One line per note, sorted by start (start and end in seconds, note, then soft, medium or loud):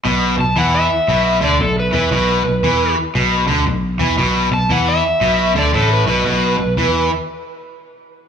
0.05 0.36 B1 medium
0.05 0.37 B2 medium
0.38 0.55 B1 medium
0.38 0.53 B2 medium
0.38 0.57 A5 medium
0.56 0.88 E2 medium
0.56 0.89 E3 medium
0.56 0.74 F#5 medium
0.74 1.41 E5 medium
1.08 1.39 B1 medium
1.08 1.41 B2 medium
1.41 1.59 D2 medium
1.41 1.59 D3 medium
1.41 1.60 D5 medium
1.60 1.91 B1 medium
1.60 1.87 B2 medium
1.60 1.77 A4 medium
1.79 1.94 B4 medium
1.93 2.10 E2 medium
1.93 2.11 E3 medium
1.93 2.95 B4 medium
2.11 2.42 B1 medium
2.11 2.44 B2 loud
2.45 2.62 B1 medium
2.45 2.60 B2 medium
2.63 2.94 E2 medium
2.63 2.96 E3 medium
3.15 3.46 B1 medium
3.15 3.47 B2 medium
3.47 3.65 D2 medium
3.47 3.66 D3 medium
3.67 3.98 B1 medium
3.67 3.93 B2 medium
3.99 4.17 E2 medium
3.99 4.18 E3 medium
4.18 4.49 B1 medium
4.18 4.51 B2 loud
4.52 4.69 B1 medium
4.52 4.67 B2 medium
4.52 4.70 A5 medium
4.70 5.01 E2 medium
4.70 5.03 E3 medium
4.70 4.88 F#5 medium
4.88 5.55 E5 medium
5.21 5.53 B1 medium
5.21 5.54 B2 medium
5.55 5.73 D2 medium
5.55 5.73 D3 medium
5.55 5.75 D5 medium
5.74 6.05 A1 medium
5.74 6.06 A2 medium
5.74 5.91 A4 medium
5.93 6.08 B4 medium
6.07 6.24 B1 medium
6.07 6.24 B2 medium
6.07 7.09 B4 medium
6.25 6.57 B1 medium
6.25 6.57 B2 medium
6.58 6.76 B1 medium
6.58 6.74 B2 medium
6.77 7.08 E2 medium
6.77 7.10 E3 medium